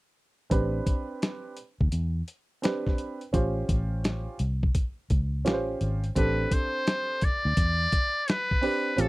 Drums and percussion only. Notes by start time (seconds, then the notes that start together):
0.51 kick, closed hi-hat
0.86 kick, closed hi-hat
1.22 snare, closed hi-hat
1.57 closed hi-hat
1.81 kick
1.92 closed hi-hat
2.28 closed hi-hat
2.63 snare, closed hi-hat
2.87 kick, snare
2.98 closed hi-hat
3.21 closed hi-hat
3.34 kick, closed hi-hat
3.69 kick, closed hi-hat
4.04 snare, closed hi-hat
4.39 closed hi-hat
4.63 kick
4.75 kick, closed hi-hat
5.10 kick, closed hi-hat
5.46 snare, closed hi-hat
5.81 closed hi-hat
6.04 closed hi-hat
6.16 kick, closed hi-hat
6.51 kick, closed hi-hat
6.87 snare, closed hi-hat
7.21 kick, closed hi-hat
7.57 kick, closed hi-hat
7.92 kick, closed hi-hat
8.28 snare, closed hi-hat
8.51 kick
8.63 open hi-hat
8.98 closed hi-hat